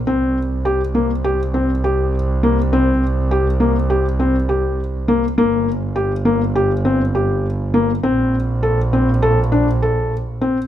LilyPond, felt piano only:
\new Staff \with { instrumentName = "Felt piano" } { \time 9/8 \key g \dorian \tempo 4. = 68 c'4 g'8 bes8 g'8 c'8 g'4 bes8 | c'4 g'8 bes8 g'8 c'8 g'4 bes8 | bes4 g'8 bes8 g'8 c'8 g'4 bes8 | c'4 a'8 c'8 a'8 d'8 a'4 c'8 | }